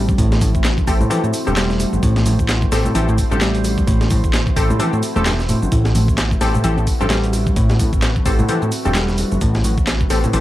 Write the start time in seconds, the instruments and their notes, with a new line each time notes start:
Already playing: analog synth bass A1, picked electric bass G3, ambient pad A3 C4 E4 F#4 C5
0.09 kick, high conga, shaker
0.18 analog synth bass A1, picked electric bass A2, kick, closed hi-hat, shaker
0.32 snare, high bongo, shaker
0.41 picked electric bass A2, kick, closed hi-hat, open hi-hat, high conga, shaker
0.55 kick, shaker
0.65 snare, clap, closed hi-hat, shaker
0.78 kick, high conga, shaker
0.87 analog synth bass A1, synth stab C4 G4 A4, kick, closed hi-hat, open hi-hat, shaker
1.01 picked electric bass A2, low conga, shaker
1.10 picked electric bass E3, synth stab C4 G4 A4, closed hi-hat, high conga, shaker
1.24 picked electric bass A2, shaker
1.34 closed hi-hat, open hi-hat, shaker
1.47 analog synth bass E1, picked electric bass G2, synth stab C4 G4 A4, high bongo, high conga, shaker
1.57 picked electric bass G3, snare, clap, closed hi-hat, open hi-hat, shaker
1.70 snare, shaker
1.80 closed hi-hat, open hi-hat, high bongo, shaker
1.93 analog synth bass G1, high conga, shaker
2.03 analog synth bass A1, picked electric bass A2, kick, closed hi-hat, shaker
2.16 snare, high bongo, shaker
2.26 picked electric bass A2, closed hi-hat, open hi-hat, high conga, shaker
2.39 kick, shaker
2.49 snare, clap, closed hi-hat, shaker
2.62 kick, high conga, shaker
2.72 analog synth bass A1, synth stab C4 G4 A4, snare, closed hi-hat, open hi-hat, shaker
2.85 picked electric bass A2, low conga, shaker
2.95 analog synth bass A1, picked electric bass E3, synth stab C4 G4 A4, closed hi-hat, high conga, shaker
3.09 picked electric bass A2, shaker
3.18 kick, closed hi-hat, open hi-hat, shaker
3.31 analog synth bass A1, picked electric bass G2, synth stab C4 G4 A4, high conga, shaker
3.41 picked electric bass G3, snare, clap, closed hi-hat, shaker
3.55 closed hi-hat, shaker
3.64 closed hi-hat, open hi-hat, high bongo, shaker
3.78 kick, high conga, shaker
3.87 analog synth bass A1, picked electric bass A2, kick, closed hi-hat, shaker
4.01 snare, high bongo, shaker
4.10 picked electric bass A2, kick, closed hi-hat, open hi-hat, high conga, shaker
4.24 kick, shaker
4.34 snare, clap, closed hi-hat, shaker
4.46 kick, high conga, shaker
4.56 analog synth bass A1, synth stab C4 G4 A4, kick, closed hi-hat, open hi-hat, shaker
4.70 picked electric bass A2, low conga, shaker
4.79 picked electric bass E3, synth stab C4 G4 A4, closed hi-hat, high conga, shaker
4.93 picked electric bass A2, shaker
5.03 closed hi-hat, open hi-hat, shaker
5.16 analog synth bass E1, picked electric bass A3, synth stab C4 G4 A4, high bongo, high conga, shaker
5.26 picked electric bass G2, snare, clap, closed hi-hat, open hi-hat, shaker
5.39 snare, shaker
5.49 picked electric bass A2, closed hi-hat, open hi-hat, high bongo, shaker
5.62 analog synth bass G1, high conga, shaker
5.72 analog synth bass A1, picked electric bass A2, ambient pad B4, kick, closed hi-hat, shaker
5.85 snare, high bongo, shaker
5.95 picked electric bass A2, closed hi-hat, open hi-hat, high conga, shaker
6.08 kick, shaker
6.18 snare, clap, closed hi-hat, shaker
6.31 kick, high conga, shaker
6.41 analog synth bass A1, synth stab C4 G4 A4, snare, closed hi-hat, open hi-hat, shaker
6.54 picked electric bass A2, low conga, shaker
6.64 analog synth bass A1, picked electric bass E3, synth stab C4 G4 A4, closed hi-hat, high conga, shaker
6.78 picked electric bass A2, shaker
6.87 kick, closed hi-hat, open hi-hat, shaker
7.00 analog synth bass A1, picked electric bass G2, synth stab C4 G4 A4, high conga, shaker
7.10 picked electric bass G3, snare, clap, closed hi-hat, shaker
7.24 closed hi-hat, shaker
7.33 closed hi-hat, open hi-hat, high bongo, shaker
7.46 kick, high conga, shaker
7.56 analog synth bass A1, picked electric bass A2, kick, closed hi-hat, shaker
7.70 snare, high bongo, shaker
7.79 picked electric bass A2, kick, closed hi-hat, open hi-hat, high conga, shaker
7.93 kick, shaker
8.02 snare, clap, closed hi-hat, shaker
8.16 kick, high conga, shaker
8.26 analog synth bass A1, synth stab C4 G4 A4, kick, closed hi-hat, open hi-hat, shaker
8.39 picked electric bass A2, low conga, shaker
8.49 picked electric bass E3, synth stab C4 G4 A4, closed hi-hat, high conga, shaker
8.62 picked electric bass A2, shaker
8.72 closed hi-hat, open hi-hat, shaker
8.85 analog synth bass E1, picked electric bass G2, synth stab C4 G4 A4, high bongo, high conga, shaker
8.95 picked electric bass G3, snare, clap, closed hi-hat, open hi-hat, shaker
9.08 snare, shaker
9.18 closed hi-hat, open hi-hat, high bongo, shaker
9.31 analog synth bass G1, high conga, shaker
9.41 analog synth bass A1, picked electric bass A2, kick, closed hi-hat, shaker
9.55 snare, high bongo, shaker
9.64 picked electric bass A2, closed hi-hat, open hi-hat, high conga, shaker
9.78 kick, shaker
9.87 snare, clap, closed hi-hat, shaker
10.01 kick, high conga, shaker
10.10 analog synth bass A1, synth stab C4 G4 A4, snare, closed hi-hat, open hi-hat, shaker
10.24 picked electric bass A2, low conga, shaker
10.33 analog synth bass A1, picked electric bass E3, synth stab C4 G4 A4, closed hi-hat, high conga, shaker